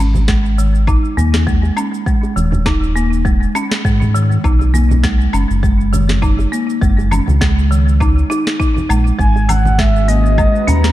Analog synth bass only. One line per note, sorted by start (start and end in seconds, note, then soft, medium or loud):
0.00 0.97 G#1 loud
1.17 1.71 D#2 medium
2.36 3.49 D#1 medium
3.85 4.38 G#2 medium
4.44 5.28 B1 loud
5.33 5.45 F#1 medium
5.50 6.46 F#1 medium
6.82 7.21 F#1 loud
7.28 8.25 C#2 loud
8.90 9.12 A#1 medium
9.19 10.47 G#1 loud
10.68 10.92 D#2 medium